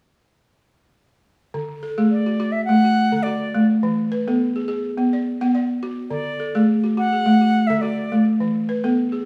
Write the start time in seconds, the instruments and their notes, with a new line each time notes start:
1.54 balafon D3
1.83 balafon A4
1.98 balafon A3 G#4
2.11 flute D5
2.26 balafon F#4
2.40 balafon F#4
2.52 flute E5
2.65 flute F#5
2.69 balafon A3
2.84 balafon F#4
3.12 balafon D3 A4
3.23 balafon F#4, flute D5
3.54 balafon A3
3.83 balafon E3
4.12 balafon B4
4.28 balafon B3 A4
4.56 balafon G#4
4.68 balafon G#4
4.98 balafon B3
5.13 balafon D5
5.41 balafon B3 F#5
5.55 balafon D5
5.83 balafon F#4
6.10 balafon D3, flute D5
6.40 balafon A4
6.55 balafon A3 G#4
6.84 balafon F#4
6.97 balafon F#4, flute F#5
7.12 balafon G#4
7.26 balafon A3
7.41 balafon F#4
7.67 balafon D3 A4, flute E5
7.81 balafon F#4, flute D5
8.12 balafon A3
8.40 balafon E3
8.69 balafon B4
8.84 balafon B3 A4
9.12 balafon G#4